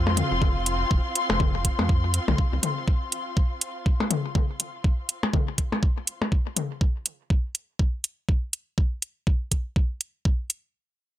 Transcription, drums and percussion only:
0.07 percussion blips medium
0.17 closed hi-hat medium
0.17 high tom medium
0.42 kick loud
0.42 high tom medium
0.66 closed hi-hat medium
0.91 kick loud
1.15 closed hi-hat medium
1.30 percussion blips medium
1.40 kick loud
1.40 high tom medium
1.65 kick medium
1.65 closed hi-hat medium
1.79 percussion blips medium
1.89 kick loud
2.14 closed hi-hat medium
2.28 high tom medium
2.28 percussion blips medium
2.38 kick loud
2.63 closed hi-hat medium
2.63 high tom medium
2.88 kick loud
3.12 closed hi-hat medium
3.37 kick loud
3.61 closed hi-hat medium
3.86 kick loud
4.00 percussion blips medium
4.11 closed hi-hat medium
4.11 high tom medium
4.35 kick loud
4.35 high tom soft
4.60 closed hi-hat medium
4.84 kick loud
5.09 closed hi-hat medium
5.23 percussion blips medium
5.33 kick loud
5.33 high tom medium
5.58 kick medium
5.58 closed hi-hat medium
5.72 percussion blips medium
5.83 kick loud
6.07 closed hi-hat medium
6.22 percussion blips medium
6.32 kick loud
6.56 closed hi-hat medium
6.56 high tom soft
6.81 kick loud
7.06 closed hi-hat medium
7.30 kick loud
7.55 closed hi-hat medium
7.79 kick loud
8.04 closed hi-hat medium
8.29 kick loud
8.53 closed hi-hat medium
8.78 kick loud
9.02 closed hi-hat medium
9.27 kick loud
9.52 kick medium
9.52 closed hi-hat medium
9.76 kick loud
10.01 closed hi-hat medium
10.25 kick loud
10.50 closed hi-hat medium

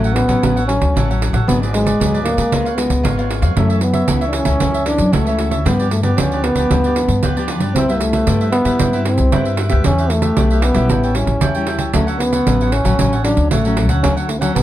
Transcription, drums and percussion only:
0.04 pandeiro soft
0.16 pandeiro medium
0.29 pandeiro medium
0.43 pandeiro medium
0.57 pandeiro soft
0.69 pandeiro medium
0.82 pandeiro medium
0.97 pandeiro medium
1.11 pandeiro soft
1.22 pandeiro medium
1.34 pandeiro medium
1.49 pandeiro medium
1.63 pandeiro soft
1.74 pandeiro medium
1.87 pandeiro medium
2.01 pandeiro medium
2.15 pandeiro soft
2.26 pandeiro medium
2.38 pandeiro medium
2.52 pandeiro medium
2.66 pandeiro soft
2.78 pandeiro medium
2.90 pandeiro medium
3.05 pandeiro medium
3.19 pandeiro soft
3.31 pandeiro medium
3.42 pandeiro medium
3.57 pandeiro medium
3.70 pandeiro soft
3.81 pandeiro medium
3.94 pandeiro medium
4.08 pandeiro medium
4.21 pandeiro soft
4.33 pandeiro medium
4.45 pandeiro medium
4.60 pandeiro medium
4.74 pandeiro soft
4.86 pandeiro medium
4.98 pandeiro medium
5.13 pandeiro medium
5.27 pandeiro soft
5.39 pandeiro medium
5.51 pandeiro soft
5.66 pandeiro medium
5.80 pandeiro soft
5.91 pandeiro medium
6.03 pandeiro medium
6.18 pandeiro medium
6.32 pandeiro soft
6.44 pandeiro medium
6.55 pandeiro medium
6.71 pandeiro medium
6.84 pandeiro soft
6.96 pandeiro medium
7.08 pandeiro soft
7.23 pandeiro medium
7.37 pandeiro soft
7.48 pandeiro medium
7.60 pandeiro medium
7.76 pandeiro medium
7.89 pandeiro soft
8.01 pandeiro medium
8.13 pandeiro medium
8.27 pandeiro medium
8.41 pandeiro soft
8.52 pandeiro medium
8.65 pandeiro medium
8.79 pandeiro medium
8.93 pandeiro soft
9.05 pandeiro medium
9.18 pandeiro medium
9.32 pandeiro medium
9.45 pandeiro soft
9.57 pandeiro medium
9.69 pandeiro soft
9.84 pandeiro medium
9.98 pandeiro soft
10.10 pandeiro medium
10.22 pandeiro medium
10.37 pandeiro medium
10.51 pandeiro soft
10.62 pandeiro medium
10.74 pandeiro medium
10.89 pandeiro medium
11.03 pandeiro soft
11.15 pandeiro medium
11.27 pandeiro medium
11.41 pandeiro medium
11.55 pandeiro soft
11.67 pandeiro medium
11.79 pandeiro medium
11.93 pandeiro medium
12.08 pandeiro soft
12.20 pandeiro medium
12.33 pandeiro medium
12.47 pandeiro medium
12.61 pandeiro soft
12.72 pandeiro medium
12.85 pandeiro medium
12.99 pandeiro medium
13.13 pandeiro soft
13.25 pandeiro medium
13.37 pandeiro soft
13.51 pandeiro medium
13.65 pandeiro soft
13.77 pandeiro medium
13.89 pandeiro medium
14.04 pandeiro medium
14.17 pandeiro soft
14.29 pandeiro medium
14.42 pandeiro medium
14.56 pandeiro medium

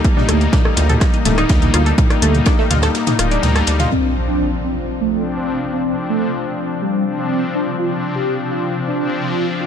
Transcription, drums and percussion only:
0.04 kick loud
0.04 closed hi-hat soft
0.04 ride medium
0.17 snare soft
0.17 mid tom loud
0.29 cross-stick medium
0.29 closed hi-hat loud
0.29 ride medium
0.41 closed hi-hat soft
0.41 ride soft
0.53 kick loud
0.53 snare loud
0.53 closed hi-hat soft
0.53 mid tom medium
0.53 ride medium
0.65 cross-stick medium
0.77 snare loud
0.77 closed hi-hat loud
0.77 ride medium
0.89 closed hi-hat soft
0.89 mid tom loud
0.89 ride soft
1.00 kick loud
1.00 cross-stick medium
1.00 snare loud
1.00 closed hi-hat soft
1.00 ride medium
1.14 closed hi-hat soft
1.25 snare loud
1.25 closed hi-hat loud
1.25 mid tom loud
1.25 ride medium
1.38 cross-stick medium
1.38 closed hi-hat soft
1.49 kick loud
1.49 snare loud
1.49 closed hi-hat soft
1.49 ride medium
1.62 closed hi-hat soft
1.62 mid tom medium
1.62 ride soft
1.74 cross-stick medium
1.74 closed hi-hat loud
1.74 ride medium
1.86 closed hi-hat soft
1.98 kick loud
1.98 closed hi-hat soft
1.98 mid tom loud
1.98 ride medium
2.10 cross-stick medium
2.10 closed hi-hat soft
2.22 closed hi-hat loud
2.22 ride medium
2.35 closed hi-hat soft
2.35 mid tom medium
2.46 kick loud
2.46 cross-stick medium
2.46 snare loud
2.46 closed hi-hat soft
2.46 ride medium
2.59 snare soft
2.71 snare loud
2.71 closed hi-hat loud
2.71 mid tom medium
2.71 ride medium
2.82 cross-stick medium
2.82 snare loud
2.82 closed hi-hat soft
2.82 ride medium
2.95 snare loud
2.95 closed hi-hat soft
2.95 ride medium
3.07 snare loud
3.07 closed hi-hat medium
3.07 mid tom medium
3.07 ride medium
3.19 cross-stick medium
3.19 closed hi-hat loud
3.19 ride medium
3.31 closed hi-hat soft
3.43 snare loud
3.43 closed hi-hat soft
3.43 mid tom medium
3.43 ride medium
3.56 cross-stick medium
3.56 snare medium
3.56 closed hi-hat soft
3.67 snare loud
3.67 closed hi-hat loud
3.67 ride medium
3.79 snare loud
3.79 closed hi-hat soft
3.79 mid tom medium
3.79 ride medium

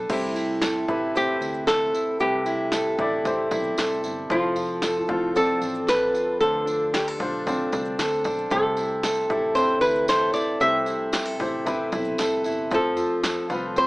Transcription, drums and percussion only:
0.09 kick loud
0.09 crash loud
0.09 tambourine soft
0.09 shaker medium
0.35 tambourine soft
0.35 shaker soft
0.62 snare loud
0.62 tambourine medium
0.62 shaker medium
0.88 kick medium
0.88 shaker soft
1.15 tambourine medium
1.15 shaker medium
1.41 tambourine soft
1.41 shaker medium
1.54 shaker medium
1.67 snare medium
1.67 tambourine medium
1.67 shaker medium
1.95 tambourine soft
1.95 shaker medium
2.20 shaker medium
2.46 tambourine soft
2.46 shaker soft
2.72 snare loud
2.72 tambourine medium
2.72 shaker medium
2.99 kick medium
2.99 shaker soft
3.25 kick loud
3.25 tambourine medium
3.25 shaker medium
3.51 kick loud
3.51 tambourine soft
3.51 shaker medium
3.64 shaker medium
3.78 snare loud
3.78 tambourine medium
3.78 shaker medium
4.04 tambourine soft
4.04 shaker medium
4.30 kick loud
4.30 shaker medium
4.56 tambourine soft
4.56 shaker soft
4.82 snare loud
4.82 tambourine medium
4.82 shaker medium
5.08 kick medium
5.08 shaker soft
5.35 tambourine medium
5.35 shaker medium
5.62 tambourine medium
5.62 shaker medium
5.75 shaker medium
5.88 snare loud
5.88 tambourine medium
5.88 shaker medium
6.15 tambourine medium
6.15 shaker medium
6.41 tambourine soft
6.41 shaker medium
6.67 tambourine soft
6.67 shaker soft
6.94 snare loud
6.94 tambourine medium
6.94 shaker medium
7.20 kick medium
7.20 tambourine soft
7.20 shaker medium
7.47 kick medium
7.47 tambourine medium
7.47 shaker medium
7.72 kick medium
7.72 tambourine soft
7.72 shaker medium
7.85 shaker medium
7.99 snare loud
7.99 tambourine medium
7.99 shaker medium
8.24 kick medium
8.24 tambourine medium
8.24 shaker soft
8.38 shaker soft
8.50 kick loud
8.50 tambourine soft
8.50 shaker medium
8.77 tambourine soft
8.77 shaker soft
9.03 snare loud
9.03 tambourine medium
9.03 shaker medium
9.30 kick medium
9.30 shaker soft
9.57 tambourine medium
9.57 shaker medium
9.82 tambourine soft
9.82 shaker medium
9.95 shaker medium
10.08 snare medium
10.08 tambourine medium
10.08 shaker medium
10.34 tambourine soft
10.34 shaker medium
10.60 tambourine soft
10.60 shaker medium
10.86 tambourine soft
10.86 shaker medium
11.13 snare loud
11.13 tambourine medium
11.13 shaker medium
11.40 kick medium
11.40 tambourine soft
11.40 shaker medium
11.66 kick medium
11.66 tambourine medium
11.66 shaker medium
11.92 kick medium
11.92 tambourine soft
11.92 shaker medium
12.05 shaker medium
12.18 snare medium
12.18 tambourine medium
12.18 shaker medium
12.44 tambourine soft
12.44 shaker medium
12.71 kick loud
12.71 tambourine soft
12.71 shaker medium
12.97 tambourine soft
12.97 shaker soft
13.23 snare loud
13.23 tambourine medium
13.23 shaker medium
13.49 kick medium
13.49 tambourine soft
13.49 shaker medium
13.76 tambourine medium
13.76 shaker medium

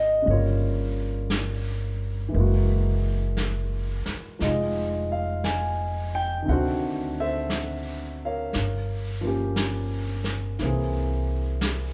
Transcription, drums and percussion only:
0.27 brush sweep soft
1.30 brush sweep soft
1.30 snare soft
1.30 hi-hat pedal soft
2.34 brush sweep soft
3.37 brush sweep soft
3.37 snare soft
3.37 hi-hat pedal soft
4.06 snare soft
4.40 brush sweep soft
4.40 snare soft
5.44 brush sweep soft
5.44 snare soft
5.44 hi-hat pedal soft
6.47 brush sweep soft
7.50 brush sweep soft
7.50 snare soft
7.50 hi-hat pedal soft
8.53 brush sweep soft
8.53 snare soft
9.56 brush sweep soft
9.56 snare soft
9.56 hi-hat pedal soft
10.24 snare soft
10.59 brush sweep soft
10.59 snare soft
11.61 brush sweep soft
11.61 snare soft
11.61 hi-hat pedal soft

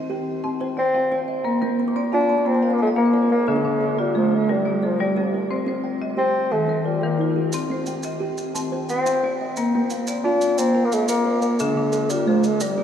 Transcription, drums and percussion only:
7.52 maracas medium
7.86 maracas medium
8.03 maracas medium
8.38 maracas medium
8.55 maracas medium
8.89 maracas medium
9.06 maracas medium
9.57 maracas medium
9.90 maracas medium
10.07 maracas medium
10.41 maracas medium
10.58 maracas medium
10.92 maracas medium
11.08 maracas medium
11.42 maracas medium
11.59 maracas medium
11.92 maracas medium
12.10 maracas medium
12.44 maracas medium
12.60 maracas medium

